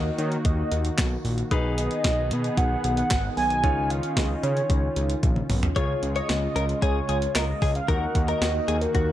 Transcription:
Already playing: analog synth bass D#2, analog synth pad D#3 A#3 F#4, grand piano D#4 F#4 A#4, soft synth lead D#5
0.18 analog synth bass D#3, soft synth lead C#5, closed hi-hat
0.32 closed hi-hat
0.45 analog synth bass D#2, soft synth lead D#5, kick, closed hi-hat
0.72 analog synth bass D#2, closed hi-hat
0.85 closed hi-hat
0.98 analog synth bass B1, kick, snare, clap, closed hi-hat
1.25 analog synth bass A#1, open hi-hat
1.38 closed hi-hat
1.51 analog synth bass B1, analog synth pad D#3 B3 G#4, grand piano D#4 G#4 B4, kick, closed hi-hat
1.78 soft synth lead D#5, closed hi-hat
1.91 closed hi-hat
2.04 analog synth bass B1, kick, snare, closed hi-hat
2.31 analog synth bass B2, closed hi-hat
2.44 closed hi-hat
2.57 analog synth bass B1, soft synth lead F#5, kick, closed hi-hat
2.84 analog synth bass B1, closed hi-hat
2.97 soft synth lead F#5, closed hi-hat
3.11 analog synth bass G#1, kick, snare, clap, closed hi-hat
3.37 analog synth bass B1, soft synth lead G#5, open hi-hat
3.50 closed hi-hat
3.64 analog synth bass C#2, analog synth pad C#4 F4, grand piano D#4 F4 C#5, kick, closed hi-hat
3.90 soft synth lead F5, closed hi-hat
4.03 closed hi-hat
4.17 analog synth bass C#2, soft synth lead D#5, kick, snare, closed hi-hat
4.43 analog synth bass C#3, soft synth lead C#5, closed hi-hat
4.57 closed hi-hat
4.70 analog synth bass C#2, kick, closed hi-hat
4.96 analog synth bass C#2, closed hi-hat
5.10 closed hi-hat
5.23 analog synth bass A#1, kick, closed hi-hat, high tom
5.36 mid tom
5.50 analog synth bass B1, mid tom, open hi-hat
5.63 closed hi-hat, floor tom
5.76 analog synth bass C#2, analog synth pad C#3 G#3 F4, grand piano F4 G#4 C#5, clean electric guitar C#5, soft synth lead C#5, kick, closed hi-hat
6.02 analog synth bass C#2, closed hi-hat
6.16 clean electric guitar C#5, soft synth lead D#5, closed hi-hat
6.29 analog synth bass C#2, soft synth lead D#5, snare, closed hi-hat
6.56 analog synth bass C#2, clean electric guitar A#4, closed hi-hat
6.69 closed hi-hat
6.82 analog synth bass C#2, clean electric guitar G#4, soft synth lead C#5, kick, closed hi-hat
7.09 analog synth bass C#2, clean electric guitar G#4, closed hi-hat
7.22 closed hi-hat
7.35 analog synth bass C#2, clean electric guitar A#4, soft synth lead D#5, snare, clap, closed hi-hat
7.62 analog synth bass C#2, clean electric guitar G#4, kick, open hi-hat
7.75 soft synth lead F5, closed hi-hat
7.88 analog synth bass D#2, analog synth pad D#3 A#3 F#4, grand piano D#4 F#4 A#4, clean electric guitar A#4, soft synth lead F#5, kick, closed hi-hat
8.15 analog synth bass D#2, kick, closed hi-hat
8.28 clean electric guitar A#4, soft synth lead D#5, closed hi-hat
8.41 analog synth bass D#2, snare, closed hi-hat
8.68 analog synth bass D#2, clean electric guitar G#4, closed hi-hat
8.81 soft synth lead A#4, closed hi-hat
8.95 analog synth bass D#2, clean electric guitar F#4, soft synth lead A#4, kick, closed hi-hat

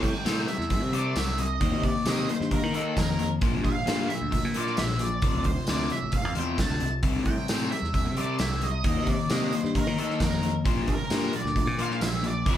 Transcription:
Already playing: picked electric bass A2
0.03 overdriven electric guitar C3 G3, lead electric guitar G5, kick, closed hi-hat
0.25 picked electric bass A2, overdriven electric guitar C3 G3 C4, snare, closed hi-hat, tambourine
0.48 overdriven electric guitar C3 G3, lead electric guitar E5, closed hi-hat
0.58 picked electric bass E2, snare
0.70 overdriven electric guitar C3 G3, kick, closed hi-hat
0.81 picked electric bass C3
0.93 overdriven electric guitar C3 G3 C4, lead electric guitar D5, closed hi-hat
1.16 picked electric bass C2, overdriven electric guitar C3 G3, lead electric guitar E5, snare, closed hi-hat, tambourine
1.38 overdriven electric guitar C3 G3, lead electric guitar D#5, closed hi-hat
1.61 picked electric bass D#2, overdriven electric guitar D#3 A#3 D#4, kick, closed hi-hat
1.72 picked electric bass C3
1.83 overdriven electric guitar D#3 A#3, lead electric guitar D5, kick, closed hi-hat
2.06 picked electric bass C3, overdriven electric guitar D#3 A#3 D#4, lead electric guitar D#5, snare, closed hi-hat, tambourine
2.29 overdriven electric guitar D#3 A#3, lead electric guitar C5, closed hi-hat
2.41 picked electric bass G2, snare
2.51 overdriven electric guitar D#3 A#3, lead electric guitar A#4, kick, closed hi-hat
2.63 picked electric bass D#3
2.73 overdriven electric guitar D#3 A#3 D#4, lead electric guitar A4, closed hi-hat
2.97 picked electric bass F2, overdriven electric guitar D#3 A#3, lead electric guitar A#4, kick, snare, closed hi-hat, tambourine
3.19 overdriven electric guitar D#3 A#3, closed hi-hat
3.41 picked electric bass A#1, overdriven electric guitar A#2 F3 A#3, kick, closed hi-hat
3.54 picked electric bass G2
3.65 overdriven electric guitar A#2 F3, lead electric guitar F5, kick, closed hi-hat
3.86 picked electric bass G2, overdriven electric guitar A#2 F3 A#3, snare, closed hi-hat, tambourine
4.09 overdriven electric guitar A#2 F3, lead electric guitar E5, closed hi-hat
4.22 picked electric bass D2
4.31 overdriven electric guitar A#2 F3, kick, closed hi-hat
4.45 picked electric bass A#2
4.54 overdriven electric guitar A#2 F3 A#3, lead electric guitar D5, closed hi-hat
4.67 snare
4.77 picked electric bass A#1, overdriven electric guitar A#2 F3, lead electric guitar E5, snare, closed hi-hat, tambourine
4.99 overdriven electric guitar A#2 F3, lead electric guitar D5, closed hi-hat
5.22 picked electric bass F1, overdriven electric guitar F2 C3 F3, kick, closed hi-hat
5.35 picked electric bass D2
5.44 overdriven electric guitar F2 C3, lead electric guitar C5, kick, closed hi-hat
5.67 picked electric bass D2, overdriven electric guitar F2 C3 F3, lead electric guitar D5, snare, closed hi-hat, tambourine
5.90 overdriven electric guitar F2 C3, lead electric guitar E5, closed hi-hat
6.03 picked electric bass A1
6.12 overdriven electric guitar F2 C3, lead electric guitar F5, kick, closed hi-hat
6.25 picked electric bass F2
6.35 picked electric bass E2, overdriven electric guitar F2 C3 F3, lead electric guitar G5, closed hi-hat
6.57 picked electric bass D2, overdriven electric guitar F2 C3, kick, snare, closed hi-hat, tambourine
6.61 lead electric guitar A5
6.80 picked electric bass C2, overdriven electric guitar F2 C3, closed hi-hat
7.03 picked electric bass C2, overdriven electric guitar C3 G3 C4, kick, closed hi-hat
7.16 picked electric bass A2
7.26 overdriven electric guitar C3 G3, lead electric guitar G5, kick, closed hi-hat
7.48 picked electric bass A2, overdriven electric guitar C3 G3 C4, snare, closed hi-hat, tambourine
7.71 overdriven electric guitar C3 G3, lead electric guitar E5, closed hi-hat
7.82 picked electric bass E2, snare
7.94 overdriven electric guitar C3 G3, kick, closed hi-hat
8.05 picked electric bass C3
8.17 overdriven electric guitar C3 G3 C4, lead electric guitar D5, closed hi-hat
8.39 picked electric bass C2, overdriven electric guitar C3 G3, lead electric guitar E5, snare, closed hi-hat, tambourine
8.61 overdriven electric guitar C3 G3, lead electric guitar D#5, closed hi-hat
8.84 picked electric bass D#2, overdriven electric guitar D#3 A#3 D#4, kick, closed hi-hat
8.96 picked electric bass C3
9.07 overdriven electric guitar D#3 A#3, lead electric guitar D5, kick, closed hi-hat
9.30 picked electric bass C3, overdriven electric guitar D#3 A#3 D#4, lead electric guitar D#5, snare, closed hi-hat, tambourine
9.52 overdriven electric guitar D#3 A#3, lead electric guitar C5, closed hi-hat
9.64 picked electric bass G2, snare
9.75 overdriven electric guitar D#3 A#3, lead electric guitar A#4, kick, closed hi-hat
9.87 picked electric bass D#3
9.98 overdriven electric guitar D#3 A#3 D#4, lead electric guitar A4, closed hi-hat
10.10 snare
10.20 picked electric bass F2, overdriven electric guitar D#3 A#3, lead electric guitar A#4, kick, snare, closed hi-hat, tambourine
10.42 overdriven electric guitar D#3 A#3, closed hi-hat
10.65 picked electric bass A#1, overdriven electric guitar A#2 F3 A#3, kick, closed hi-hat
10.76 picked electric bass G2
10.88 overdriven electric guitar A#2 F3, lead electric guitar A#4, kick, closed hi-hat
11.10 picked electric bass G2, overdriven electric guitar A#2 F3 A#3, snare, closed hi-hat, tambourine
11.33 overdriven electric guitar A#2 F3, lead electric guitar D5, closed hi-hat
11.44 picked electric bass D2, snare
11.56 overdriven electric guitar A#2 F3, kick, closed hi-hat
11.67 picked electric bass A#2
11.78 overdriven electric guitar A#2 F3 A#3, lead electric guitar F5, closed hi-hat
11.91 snare
12.01 picked electric bass A#1, overdriven electric guitar A#2 F3, lead electric guitar E5, snare, closed hi-hat, tambourine
12.23 overdriven electric guitar A#2 F3, lead electric guitar D5, closed hi-hat
12.46 picked electric bass F1, overdriven electric guitar F2 C3 F3, lead electric guitar C5, kick, closed hi-hat

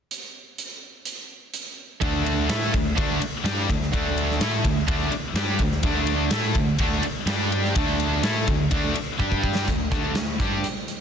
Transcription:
0.11 closed hi-hat
0.58 closed hi-hat
1.05 closed hi-hat
1.54 closed hi-hat
2.02 picked electric bass D2, distorted electric guitar D3 A3 D4, kick, ride
2.26 ride
2.48 picked electric bass A2, distorted electric guitar A3 E4 A4, snare, ride
2.72 picked electric bass D2, distorted electric guitar D3 A3, kick, ride
2.97 picked electric bass D2, distorted electric guitar D3 A3 D4, kick, ride
3.21 muted distorted electric guitar stroke, muted picked electric bass stroke, muted overdriven electric guitar stroke, ride
3.44 picked electric bass G2, distorted electric guitar G3 D4 G4, snare, ride
3.69 picked electric bass D2, distorted electric guitar D3 A3, kick, ride
3.82 snare
3.93 picked electric bass D2, distorted electric guitar D3 A3 D4, kick, ride
4.18 ride
4.31 snare
4.39 picked electric bass A2, distorted electric guitar A3 E4 A4, snare, ride
4.64 picked electric bass D2, distorted electric guitar D3 A3, kick, ride
4.87 picked electric bass D2, distorted electric guitar D3 A3 D4, kick, ride
5.11 muted picked electric bass stroke, muted overdriven electric guitar stroke, muted distorted electric guitar stroke, ride
5.34 picked electric bass G2, distorted electric guitar G3 D4 G4, snare, ride
5.59 picked electric bass D2, distorted electric guitar D3 A3, kick, ride
5.71 snare
5.82 picked electric bass D2, distorted electric guitar D3 A3 D4, kick, ride
6.07 ride
6.31 picked electric bass A2, distorted electric guitar A3 E4 A4, snare, ride
6.54 picked electric bass D2, distorted electric guitar D3 A3, kick, ride
6.79 picked electric bass D2, distorted electric guitar D3 A3 D4, kick, ride
7.02 muted picked electric bass stroke, muted overdriven electric guitar stroke, muted distorted electric guitar stroke, ride
7.26 picked electric bass G2, distorted electric guitar G3 D4 G4, snare, ride
7.52 ride
7.64 snare
7.75 picked electric bass D2, distorted electric guitar D3 A3 D4, kick, ride
8.00 ride
8.23 picked electric bass A2, distorted electric guitar A3 E4 A4, snare, ride
8.47 picked electric bass D2, distorted electric guitar D3 A3, kick, ride
8.71 picked electric bass D2, distorted electric guitar D3 A3 D4, kick, ride
8.94 muted picked electric bass stroke, muted overdriven electric guitar stroke, muted distorted electric guitar stroke, ride
9.19 picked electric bass G2, distorted electric guitar G3 D4 G4, kick
9.32 kick
9.44 kick
9.55 snare
9.67 picked electric bass D2, distorted electric guitar D3 A3, kick, closed hi-hat
9.91 picked electric bass D2, distorted electric guitar D3 A3 D4, kick, closed hi-hat
10.15 picked electric bass D2, distorted electric guitar D3 A3, snare, closed hi-hat
10.39 picked electric bass G2, distorted electric guitar G3 D4 G4, kick, closed hi-hat
10.64 closed hi-hat
10.88 closed hi-hat

